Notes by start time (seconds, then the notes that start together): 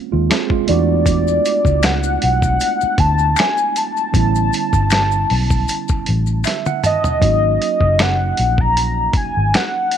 Already playing: C#4 F4
0.12 D#2 G#3 F4
0.30 C4 G#4, finger snap, snare, closed hi-hat
0.50 G#3 F4, kick
0.66 E2 A3 B3 D4 E4 D5, closed hi-hat
0.71 F#4
1.06 kick, closed hi-hat, maracas
1.28 maracas
1.45 closed hi-hat, maracas
1.65 C#2, kick, maracas
1.83 F#5, finger snap, snare, closed hi-hat, maracas
2.03 maracas
2.22 B1 F#5, closed hi-hat
2.42 kick, maracas
2.60 closed hi-hat, maracas
2.81 muted fingered electric bass stroke, maracas
2.98 D2 A5, kick, closed hi-hat
3.18 maracas
3.36 G#5, finger snap, closed hi-hat, maracas
3.39 finger snap, snare
3.58 maracas
3.76 A5, closed hi-hat, maracas
3.97 maracas
4.12 A1 D3 G3 B3 C#4, kick, closed hi-hat, maracas
4.16 E4
4.35 maracas
4.53 closed hi-hat, maracas
4.73 G1, kick, maracas
4.90 finger snap, snare, closed hi-hat, maracas
5.12 maracas
5.30 B1, open hi-hat
5.50 kick, maracas
5.68 closed hi-hat, maracas
5.88 kick, maracas
6.06 A1, closed hi-hat
6.26 maracas
6.44 E5, finger snap, snare, closed hi-hat, maracas
6.66 F#5, high tom, maracas
6.84 D#5 A5, closed hi-hat, mid tom, maracas
7.04 floor tom, maracas
7.20 G#1 F#3 A#3 C#4 D#4, kick, closed hi-hat
7.24 F#4
7.62 closed hi-hat
7.81 F#1, kick
7.99 F#5, finger snap, snare, closed hi-hat
8.37 A#1, closed hi-hat
8.58 A#5, kick
8.77 closed hi-hat
9.13 G#5, muted fingered electric bass stroke, kick, closed hi-hat
9.37 G#1
9.54 F#5, finger snap, snare, closed hi-hat
9.91 closed hi-hat